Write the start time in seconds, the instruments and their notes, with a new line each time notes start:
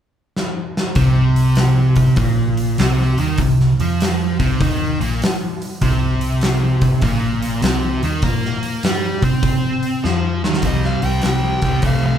0.36 snare
0.77 snare
0.95 picked electric bass C2, overdriven electric guitar C3, kick, open hi-hat
1.36 open hi-hat
1.55 snare, open hi-hat
1.96 kick, open hi-hat
2.16 picked electric bass A#1, overdriven electric guitar A#2, kick, open hi-hat
2.57 open hi-hat
2.78 picked electric bass C2, overdriven electric guitar C3, snare, open hi-hat
3.18 picked electric bass D#2, overdriven electric guitar D#3, open hi-hat
3.38 picked electric bass C2, overdriven electric guitar C3, kick, open hi-hat
3.60 snare
3.79 picked electric bass F2, overdriven electric guitar F3, open hi-hat
4.01 snare, open hi-hat
4.39 picked electric bass C2, overdriven electric guitar C3, kick, open hi-hat
4.60 picked electric bass D#2, overdriven electric guitar D#3, kick, open hi-hat
5.01 picked electric bass A#1, overdriven electric guitar A#2, open hi-hat
5.22 snare, open hi-hat
5.62 open hi-hat
5.81 picked electric bass C2, overdriven electric guitar C3, kick, open hi-hat
6.21 open hi-hat
6.41 snare, open hi-hat
6.81 kick, open hi-hat
7.02 picked electric bass A#1, overdriven electric guitar A#2, kick, open hi-hat
7.42 open hi-hat
7.62 picked electric bass C2, overdriven electric guitar C3, snare, open hi-hat
8.03 picked electric bass D#2, overdriven electric guitar D#3, open hi-hat
8.22 picked electric bass A#2, overdriven electric guitar A#3, kick, open hi-hat
8.45 snare
8.63 open hi-hat
8.83 picked electric bass G2, overdriven electric guitar G3, snare, open hi-hat
9.22 picked electric bass C3, overdriven electric guitar C4, kick, open hi-hat
9.43 kick, open hi-hat
9.83 open hi-hat
10.04 picked electric bass F2, overdriven electric guitar F3, snare
10.44 picked electric bass D#2, overdriven electric guitar D#3, snare
10.54 snare
10.62 picked electric bass C2, overdriven electric guitar C3 G3, kick, open hi-hat
10.67 lead electric guitar D#5
10.84 lead electric guitar F5, snare
11.02 picked electric bass C2, overdriven electric guitar C3 G3, lead electric guitar G5, open hi-hat
11.22 picked electric bass C2, overdriven electric guitar C3 G3, snare, open hi-hat
11.62 picked electric bass C2, overdriven electric guitar C3 G3, kick, open hi-hat
11.82 picked electric bass C2, overdriven electric guitar C3 A3, kick, open hi-hat
11.87 lead electric guitar F5
12.06 lead electric guitar F5